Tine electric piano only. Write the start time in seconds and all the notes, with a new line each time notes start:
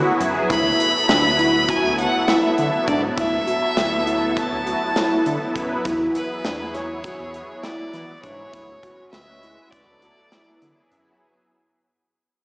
0.50 E4
1.10 D4
1.39 E4
1.68 F#4
2.28 E4
2.88 D4
3.18 E4
3.47 F#4
4.07 E4
4.66 F#4
4.96 E4
5.85 E4
6.45 D4
6.75 E4
7.05 F#4
7.64 E4
8.24 D4
8.54 E4
8.83 F#4
9.43 E4
10.02 F#4
10.32 E4